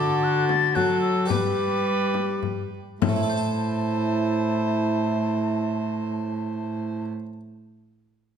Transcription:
Already playing: harpsichord D3 F#4 A4 D5, cello D3, trombone F#4, violin A4, flute D6
0.23 flute F#6
0.48 flute A6, frame drum
0.75 harpsichord F#3, cello F#3, trombone F#4, violin A4, flute F#6, frame drum
1.01 flute E6
1.25 harpsichord G3 G4 B4 D5, violin B4, flute D6
1.30 cello G3, trombone G4, frame drum
2.14 frame drum
2.43 frame drum
3.01 harpsichord A2, cello A2, trombone E4, violin C5, flute A5, frame drum
3.09 harpsichord A3
3.16 harpsichord E4
3.23 harpsichord A4
3.30 harpsichord C5
3.37 harpsichord A5

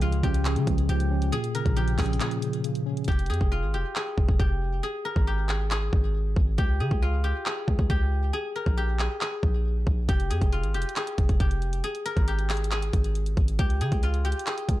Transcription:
Already playing: 808-style bass C#2, tine electric piano C#3 F3, guzheng G#4 A#4
0.01 tine electric piano G#3, guzheng F4, closed hi-hat
0.12 closed hi-hat
0.23 808-style bass C#2, tine electric piano C#4, guzheng G4, kick, closed hi-hat
0.34 closed hi-hat
0.45 tine electric piano C#3, guzheng G#4, clap, closed hi-hat
0.56 808-style bass C#3, closed hi-hat
0.67 808-style bass C#2, tine electric piano F3, kick, closed hi-hat
0.78 closed hi-hat
0.89 808-style bass C#2, tine electric piano F3, guzheng G4, closed hi-hat
1.00 closed hi-hat
1.11 tine electric piano C#4
1.22 closed hi-hat
1.32 tine electric piano A#2, guzheng G#4, closed hi-hat
1.44 closed hi-hat
1.55 tine electric piano C#3, guzheng A#4, closed hi-hat
1.66 808-style bass A#1, kick, closed hi-hat
1.76 tine electric piano F3, guzheng G4, closed hi-hat
1.88 closed hi-hat
1.98 808-style bass A#1, tine electric piano C#4, guzheng G#4, kick, clap, closed hi-hat, open hi-hat
2.06 closed hi-hat
2.13 closed hi-hat
2.20 tine electric piano A#2, guzheng G#4, clap, closed hi-hat
2.31 closed hi-hat
2.42 tine electric piano C#3, closed hi-hat
2.53 closed hi-hat
2.64 tine electric piano C#3, closed hi-hat
2.75 closed hi-hat
2.86 tine electric piano C#4
2.97 closed hi-hat
3.04 808-style bass F1, guzheng G4, kick, closed hi-hat
3.12 closed hi-hat
3.19 closed hi-hat
3.26 808-style bass F2, guzheng G#4, closed hi-hat
3.34 closed hi-hat
3.41 808-style bass F1, kick
3.52 guzheng F4
3.63 808-style bass G#1
3.74 808-style bass F1, guzheng G4
3.96 guzheng G#4, clap
4.18 808-style bass F1, kick
4.28 808-style bass F1, kick
4.39 808-style bass F1, guzheng G4, kick
4.83 guzheng G#4
5.05 guzheng A#4
5.16 808-style bass G#1, kick
5.27 guzheng G4
5.49 guzheng G#4, clap
5.71 guzheng G#4, clap
5.93 808-style bass G#1, kick
6.36 808-style bass G#1, kick
6.58 808-style bass C#2, guzheng G4, kick
6.80 808-style bass C#3, guzheng G#4
6.91 808-style bass C#2, kick
7.02 guzheng F4
7.24 guzheng G4
7.46 guzheng G#4, clap
7.68 808-style bass C#2, kick
7.79 808-style bass C#2, kick
7.90 808-style bass C#2, guzheng G4, kick
8.33 guzheng G#4
8.56 guzheng A#4
8.66 808-style bass A#1, kick
8.77 guzheng G4
8.99 guzheng G#4, clap
9.21 guzheng G#4, clap
9.43 808-style bass A#1, kick
9.87 808-style bass A#1, kick
10.09 808-style bass F1, guzheng G4, kick, closed hi-hat
10.20 closed hi-hat
10.30 808-style bass F2, guzheng G#4, closed hi-hat
10.41 808-style bass F1, kick, closed hi-hat
10.52 guzheng F4, closed hi-hat
10.63 808-style bass G#1, closed hi-hat
10.74 808-style bass F1, guzheng G4, closed hi-hat
10.82 closed hi-hat
10.89 closed hi-hat
10.96 guzheng G#4, clap, closed hi-hat
11.07 closed hi-hat
11.18 808-style bass F1, kick, closed hi-hat
11.29 808-style bass F1, kick, closed hi-hat
11.40 808-style bass F1, guzheng G4, kick, closed hi-hat
11.51 closed hi-hat
11.62 closed hi-hat
11.73 closed hi-hat
11.84 guzheng G#4, closed hi-hat
11.95 closed hi-hat
12.06 guzheng A#4, closed hi-hat
12.17 808-style bass G#1, kick, closed hi-hat
12.28 guzheng G4, closed hi-hat
12.39 closed hi-hat
12.50 guzheng G#4, clap, closed hi-hat, open hi-hat
12.57 closed hi-hat
12.64 closed hi-hat
12.71 guzheng G#4, clap, closed hi-hat
12.82 closed hi-hat
12.93 808-style bass G#1, kick, closed hi-hat
13.04 closed hi-hat
13.15 closed hi-hat
13.26 closed hi-hat
13.37 808-style bass G#1, kick, closed hi-hat
13.48 closed hi-hat
13.59 808-style bass C#2, guzheng G4, kick, closed hi-hat
13.70 closed hi-hat
13.81 808-style bass C#3, guzheng G#4, closed hi-hat
13.92 808-style bass C#2, kick, closed hi-hat
14.03 guzheng F4, closed hi-hat
14.14 closed hi-hat
14.25 guzheng G4, closed hi-hat
14.32 closed hi-hat
14.39 closed hi-hat
14.47 guzheng G#4, clap, closed hi-hat
14.58 closed hi-hat
14.69 808-style bass C#2, kick, closed hi-hat

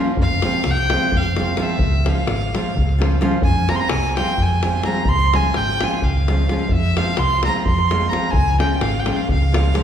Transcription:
Already playing: nylon-string guitar F3 A#3 C#4 F4
0.08 davul high
0.17 fingered electric bass F1, davul low
0.22 violin F5
0.42 nylon-string guitar F3 G#3 C4 F4, davul high
0.54 davul high
0.64 fingered electric bass C2, davul high
0.71 violin G5
0.77 davul high
0.90 nylon-string guitar F3 G#3 C4 F4, davul high
1.01 davul high
1.12 fingered electric bass F1, davul low
1.17 violin F5
1.23 davul high
1.36 nylon-string guitar F3 G#3 C4 F4, davul high
1.48 davul high
1.57 nylon-string guitar F3 G#3 C4 F4, davul high
1.62 violin E5
1.69 davul high
1.78 fingered electric bass C#2, davul low
2.04 nylon-string guitar F3 G#3 C#4 F4, davul high
2.08 violin F5
2.16 davul high
2.27 fingered electric bass G#1, davul high
2.42 davul high
2.55 nylon-string guitar F3 G#3 C#4 F4, davul high
2.66 davul high
2.75 fingered electric bass C#2, davul low
2.89 davul high
2.98 nylon-string guitar F3 G#3 C#4 F4, davul high
3.12 davul high
3.21 nylon-string guitar F3 G#3 C#4 F4, davul high
3.31 davul high
3.42 fingered electric bass F2, violin G#5, davul low
3.67 nylon-string guitar F3 G#3 C4 F4, violin A#5, davul high
3.75 violin C6
3.80 violin A#5, davul high
3.89 fingered electric bass C2, violin G#5, davul high
4.05 davul high
4.16 nylon-string guitar F3 G#3 C4 F4, violin G5, davul high
4.28 davul high
4.38 fingered electric bass F2, davul low
4.42 violin G#5
4.50 davul high
4.63 nylon-string guitar F3 G#3 C4 F4, davul high
4.73 davul high
4.83 nylon-string guitar F3 G#3 C4 F4, violin A#5, davul high
4.95 davul high
5.05 fingered electric bass C#2, violin C6, davul low
5.19 davul high
5.32 nylon-string guitar F3 G#3 C#4 F4, violin G#5, davul high
5.44 davul high
5.54 fingered electric bass G#1, violin G5, davul high
5.69 davul high
5.81 nylon-string guitar F3 G#3 C#4 F4, violin G#5, davul high
5.91 davul high
6.02 fingered electric bass C#2, violin F5, davul low
6.28 nylon-string guitar F3 G#3 C#4 F4, davul high
6.39 davul high
6.49 nylon-string guitar F3 G#3 C#4 F4, davul high
6.59 davul high
6.69 fingered electric bass F2, violin E5, davul low
6.96 nylon-string guitar F3 G#3 C4 F4, violin F5, davul high
7.07 davul high
7.17 fingered electric bass C2, violin C6, davul high
7.29 davul high
7.43 nylon-string guitar F3 G#3, violin A#5, davul high
7.47 nylon-string guitar C4 F4
7.56 davul high
7.66 fingered electric bass F2, violin C6, davul low
7.78 davul high
7.90 nylon-string guitar F3 G#3 C4 F4, davul high
8.01 davul high
8.09 nylon-string guitar F3 G#3 C4 F4, violin A#5
8.13 davul high
8.24 davul high
8.31 fingered electric bass C#2, violin G#5, davul low
8.58 nylon-string guitar F3 G#3 C#4 F4, violin G5, davul high
8.70 davul high
8.81 fingered electric bass G#1, violin F5, davul high
8.94 davul high
9.00 violin G5
9.06 nylon-string guitar F3 G#3 C#4 F4, davul high
9.16 violin F5, davul high
9.29 fingered electric bass C#2, violin F5, davul low
9.42 davul high
9.52 nylon-string guitar F3 G#3 C#4 F4, davul high
9.66 davul high
9.74 nylon-string guitar F3 G#3 C#4 F4, davul high

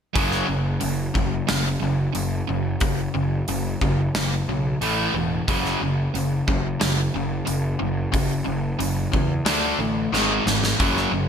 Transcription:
0.15 picked electric bass F#1, overdriven electric guitar F#2 C#3 F#3, kick, open hi-hat
0.31 snare
0.48 picked electric bass F#1, overdriven electric guitar F#2 C#3
0.80 picked electric bass F#1, overdriven electric guitar F#2 C#3, open hi-hat
1.14 picked electric bass F#1, overdriven electric guitar F#2 C#3, kick
1.48 picked electric bass F#1, overdriven electric guitar F#2 C#3, snare, open hi-hat
1.82 picked electric bass F#1, overdriven electric guitar F#2 C#3
2.15 picked electric bass F#1, overdriven electric guitar F#2 C#3, open hi-hat
2.49 picked electric bass F#1, overdriven electric guitar F#2 C#3
2.80 picked electric bass F#1, overdriven electric guitar F#2 C#3, kick, open hi-hat
3.14 picked electric bass F#1, overdriven electric guitar F#2 C#3
3.48 picked electric bass F#1, overdriven electric guitar F#2 C#3, open hi-hat
3.81 picked electric bass F#1, overdriven electric guitar F#2 C#3, kick
4.15 picked electric bass F#1, overdriven electric guitar F#2 C#3, snare, open hi-hat
4.48 picked electric bass B1, overdriven electric guitar F#2 C#3
4.81 picked electric bass A1, overdriven electric guitar A2 E3 A3, open hi-hat
5.14 picked electric bass E1, overdriven electric guitar A2 E3
5.48 picked electric bass F#1, overdriven electric guitar F#2 C#3 F#3, kick, open hi-hat
5.65 snare
5.82 picked electric bass F#1, overdriven electric guitar F#2 C#3
6.14 picked electric bass F#1, overdriven electric guitar F#2 C#3, open hi-hat
6.48 picked electric bass F#1, overdriven electric guitar F#2 C#3, kick
6.80 picked electric bass F#1, overdriven electric guitar F#2 C#3, snare, open hi-hat
7.15 picked electric bass F#1, overdriven electric guitar F#2 C#3
7.46 picked electric bass F#1, overdriven electric guitar F#2 C#3, open hi-hat
7.79 picked electric bass F#1, overdriven electric guitar F#2 C#3
8.12 picked electric bass F#1, overdriven electric guitar F#2 C#3, kick, open hi-hat
8.44 picked electric bass F#1, overdriven electric guitar F#2 C#3
8.79 picked electric bass F#1, overdriven electric guitar F#2 C#3, open hi-hat
9.12 picked electric bass E2, overdriven electric guitar F#2 C#3, kick
9.45 picked electric bass D2, overdriven electric guitar D3 A3 D4, snare, open hi-hat
9.79 picked electric bass A1, overdriven electric guitar D3 A3
10.12 picked electric bass G#1, overdriven electric guitar G#2 D#3 G#3, snare
10.46 picked electric bass G#1, overdriven electric guitar G#2 D#3, snare
10.64 snare
10.79 picked electric bass F#1, overdriven electric guitar F#2 C#3 F#3, kick, open hi-hat
10.97 snare
11.12 picked electric bass F#1, overdriven electric guitar F#2 C#3

